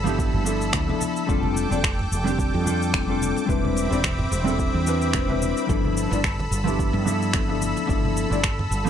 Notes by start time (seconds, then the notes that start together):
Already playing: G1 A4 B5 E6
0.04 F3 B3 D4 E4 G4, high conga, cabasa
0.19 kick, cabasa
0.33 G1, low conga
0.44 F3 B3 D4 E4 A4, muted conga, cabasa
0.61 cabasa
0.73 D2, finger snap, kick, cabasa
0.87 F3 B3 D4 E4 A4, high conga
1.01 high conga, cabasa
1.17 cabasa
1.26 F1 G3 C4 D4 F4 A4 G5 D6, kick, cabasa
1.43 high conga
1.56 muted conga, cabasa
1.69 F1 G3 C4 D4 F4 D5, cabasa
1.84 finger snap, kick, cabasa
1.99 muted conga, low conga
2.11 F1, cabasa
2.24 G3 C4 D4 G4, high conga, cabasa
2.39 kick, cabasa
2.54 F2, muted conga
2.64 G3 C4 D4 F4 A4, high conga, cabasa
2.82 cabasa
2.94 F1, finger snap, kick, cabasa
3.06 G3 C4 D4 F4 A4
3.22 high conga, cabasa
3.37 muted conga, cabasa
3.46 E1 G3 C4 D4 E4 B4 E5 B5, kick
3.50 cabasa
3.65 high conga
3.76 muted conga, cabasa
3.89 E1 G3 C4 D4 E4 D5, cabasa
4.04 finger snap, kick, cabasa
4.19 muted conga, low conga
4.31 E1, cabasa
4.44 G3 C4 D4 E4 A4, high conga, cabasa
4.59 kick, cabasa
4.74 E2
4.85 G3 C4 D4 E4 B4, cabasa
5.02 cabasa
5.13 E1, finger snap, kick, cabasa
5.27 G3 C4 D4 E4 B4, high conga
5.42 high conga, cabasa
5.57 cabasa
5.67 G1 F3 B3 D4 E4 A4 E6, kick, cabasa
5.85 high conga
5.97 muted conga, cabasa
6.10 G1 F3 B3 D4 E4 D5, cabasa
6.24 finger snap, kick, cabasa
6.40 muted conga, low conga
6.51 G1, cabasa
6.64 F3 B3 D4 E4 G4, high conga, cabasa
6.79 kick, cabasa
6.93 G2, muted conga
7.04 F3 B3 D4 E4 A4, high conga, cabasa
7.22 cabasa
7.33 G1, finger snap, kick, cabasa
7.47 F3 B3 D4 E4 A4
7.61 high conga, cabasa
7.77 muted conga, cabasa
7.86 G1 F3 B3 D4 E4 A4, kick, cabasa
8.05 high conga
8.17 muted conga, cabasa
8.29 G1 F3 B3 D4 E4 D5, cabasa
8.44 finger snap, kick, cabasa
8.59 muted conga, low conga
8.71 G1, cabasa
8.85 F3 B3, cabasa